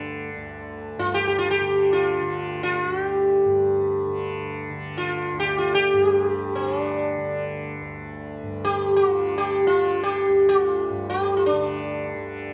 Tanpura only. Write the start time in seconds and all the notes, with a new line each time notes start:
Already playing: D2 G2 D3
0.36 D2
0.98 G2
1.61 D3
2.22 D3
2.84 D2
3.46 G2
4.07 D3
4.70 D3
5.33 D2
5.93 G2
6.56 D3
7.18 D3
7.81 D2
8.43 G2
9.04 D3
9.66 D3
10.28 D2
10.90 G2
11.53 D3
12.15 D3